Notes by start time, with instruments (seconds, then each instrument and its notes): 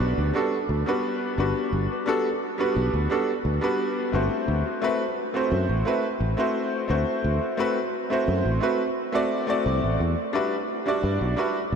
Already playing: grand piano G3 B3 D4 F#4 B4
0.00 fretless electric bass B1
0.18 fretless electric bass D2
0.34 grand piano G3 B3 D4 F#4 A4
0.69 fretless electric bass D2
0.86 grand piano G3 B3 D4 F#4 B4
1.38 fretless electric bass G1, grand piano G3 B3 D4 F#4 B4
1.73 fretless electric bass G1
2.06 grand piano G3 B3 D4 F#4 A4
2.58 grand piano G3 B3 D4 F#4 B4
2.76 fretless electric bass B1
2.94 fretless electric bass D2
3.10 grand piano G3 B3 D4 F#4 A4
3.45 fretless electric bass D2
3.61 grand piano G3 B3 D4 F#4 B4
4.12 fretless electric bass G1, grand piano A3 C4 E4 F#4 C5
4.48 fretless electric bass D2
4.82 grand piano A3 C4 E4 F#4 B4
5.34 grand piano A3 C4 E4 F#4 C5
5.52 fretless electric bass F#2
5.69 fretless electric bass A1
5.85 grand piano A3 C4 E4 F#4 B4
6.20 fretless electric bass A1
6.37 grand piano A3 C4 E4 F#4 C5
6.88 fretless electric bass D2, grand piano A3 C4 E4 F#4 C5
7.24 fretless electric bass D2
7.57 grand piano A3 C4 E4 F#4 B4
8.10 grand piano A3 C4 E4 F#4 C5
8.28 fretless electric bass F#2
8.45 fretless electric bass A1
8.60 grand piano A3 C4 E4 F#4 B4
9.12 grand piano A3 C4 E4 F#4 D5
9.47 grand piano A3 C4 E4 F#4 D5
9.66 fretless electric bass C2
9.84 fretless electric bass A1
10.00 fretless electric bass E2
10.33 grand piano G3 D4 E4 F#4 B4
10.86 grand piano G3 D4 E4 F#4 D5
11.04 fretless electric bass G2
11.21 fretless electric bass B1
11.36 grand piano G3 D4 E4 F#4 B4
11.72 fretless electric bass B1